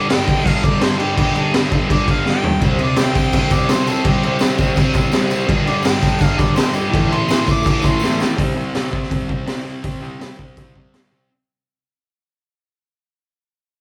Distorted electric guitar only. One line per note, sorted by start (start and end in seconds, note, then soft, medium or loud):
0.00 0.10 D3 medium
0.00 0.12 G3 medium
0.09 0.30 G2 medium
0.09 0.27 D3 medium
0.09 0.26 G3 medium
0.27 0.43 G2 medium
0.27 0.45 D3 medium
0.27 0.47 G3 medium
0.44 0.65 G2 medium
0.44 0.63 D3 medium
0.44 0.63 G3 loud
0.64 0.79 G2 medium
0.64 0.82 D3 medium
0.64 0.83 G3 medium
0.80 1.16 G2 medium
0.80 1.01 D3 medium
0.80 0.98 G3 loud
0.98 1.18 D3 medium
0.98 1.20 G3 medium
1.17 1.52 G2 medium
1.17 1.38 D3 loud
1.17 1.35 G3 loud
1.35 1.55 D3 medium
1.35 1.57 G3 medium
1.53 1.74 G2 medium
1.53 1.73 D3 medium
1.53 1.72 G3 medium
1.72 1.90 G2 medium
1.72 1.91 D3 medium
1.72 1.93 G3 medium
1.91 2.09 G2 medium
1.91 2.08 D3 medium
1.91 2.07 G3 medium
2.08 2.24 G2 medium
2.08 2.27 D3 medium
2.08 2.28 G3 loud
2.26 2.60 G2 medium
2.26 2.46 D3 medium
2.26 2.43 G3 medium
2.43 2.62 D3 medium
2.43 2.63 G3 medium
2.61 2.97 C3 loud
2.61 2.83 G3 loud
2.61 2.79 C4 loud
2.80 2.99 G3 medium
2.80 3.01 C4 medium
2.97 3.18 C3 medium
2.97 3.16 G3 medium
2.97 3.14 C4 medium
3.14 3.36 G3 medium
3.14 3.37 C4 medium
3.19 3.33 C3 medium
3.34 3.53 C3 medium
3.34 3.53 G3 medium
3.38 3.50 C4 medium
3.51 3.69 C3 medium
3.51 3.72 G3 medium
3.51 3.72 C4 medium
3.70 4.04 C3 medium
3.70 3.91 G3 medium
3.70 3.87 C4 medium
3.88 4.07 G3 medium
3.88 4.08 C4 medium
4.05 4.41 C3 loud
4.05 4.28 G3 loud
4.05 4.23 C4 loud
4.24 4.44 G3 medium
4.24 4.44 C4 medium
4.43 4.61 C3 medium
4.43 4.60 G3 medium
4.43 4.58 C4 medium
4.59 4.74 C3 medium
4.59 4.76 G3 medium
4.59 4.78 C4 loud
4.75 4.97 C3 medium
4.75 4.95 G3 medium
4.75 4.93 C4 medium
4.95 5.12 C3 medium
4.95 5.13 G3 medium
4.95 5.15 C4 medium
5.13 5.47 C3 medium
5.13 5.32 G3 medium
5.13 5.29 C4 medium
5.30 5.49 G3 medium
5.30 5.47 C4 medium
5.47 5.82 G2 loud
5.47 5.68 D3 loud
5.47 5.65 G3 loud
5.66 5.84 D3 medium
5.66 5.85 G3 medium
5.83 6.03 G2 medium
5.83 6.02 D3 medium
5.83 5.99 G3 medium
6.01 6.17 G2 medium
6.01 6.19 D3 medium
6.01 6.20 G3 loud
6.18 6.39 G2 medium
6.18 6.37 D3 medium
6.18 6.36 G3 medium
6.37 6.54 G2 medium
6.37 6.55 D3 medium
6.37 6.56 G3 medium
6.55 6.90 G2 medium
6.55 6.75 D3 medium
6.55 6.71 G3 medium
6.73 6.92 D3 medium
6.73 6.91 G3 medium
6.90 7.27 A2 loud
6.90 7.12 E3 loud
6.90 7.08 A3 loud
7.09 7.29 E3 medium
7.09 7.30 A3 medium
7.28 7.48 A2 medium
7.28 7.46 E3 medium
7.28 7.44 A3 medium
7.45 7.62 A2 medium
7.45 7.64 E3 medium
7.45 7.66 A3 medium
7.63 7.86 A2 medium
7.63 7.84 E3 medium
7.63 7.82 A3 medium
7.83 8.02 E3 medium
7.83 8.04 A3 medium
7.87 8.00 A2 medium
8.02 8.37 A2 medium
8.02 8.21 E3 medium
8.02 8.18 A3 medium
8.19 8.37 E3 medium
8.19 8.37 A3 medium
8.38 8.55 C3 loud
8.38 8.56 G3 loud
8.38 8.57 C4 loud
8.56 8.74 C3 medium
8.56 8.75 G3 medium
8.56 8.75 C4 loud
8.75 8.91 C3 medium
8.75 8.92 G3 medium
8.75 8.94 C4 medium
8.92 9.10 C3 medium
8.92 9.11 G3 medium
8.92 9.11 C4 medium
9.10 9.29 C3 loud
9.10 9.29 G3 loud
9.10 9.30 C4 medium
9.29 9.46 C3 medium
9.29 9.47 G3 medium
9.29 9.48 C4 medium
9.47 9.64 C3 medium
9.47 9.65 G3 medium
9.47 9.65 C4 medium
9.64 9.83 C3 medium
9.64 9.84 G3 medium
9.64 9.84 C4 medium
9.84 10.00 C3 loud
9.84 10.01 G3 loud
9.84 10.02 C4 loud
10.02 10.19 C3 medium
10.02 10.19 G3 medium
10.02 10.20 C4 medium
10.20 10.36 C3 medium
10.20 10.37 G3 medium
10.20 10.38 C4 medium
10.37 10.56 C3 medium
10.37 10.57 G3 medium
10.37 10.57 C4 medium
10.58 10.75 C3 medium
10.58 10.76 G3 medium
10.58 10.76 C4 medium
10.76 10.93 C3 medium
10.76 10.94 G3 medium
10.76 10.94 C4 medium
10.94 11.10 C3 medium
10.94 11.12 G3 medium
10.94 11.13 C4 medium
11.12 11.29 C3 medium
11.12 11.29 G3 medium
11.12 11.30 C4 medium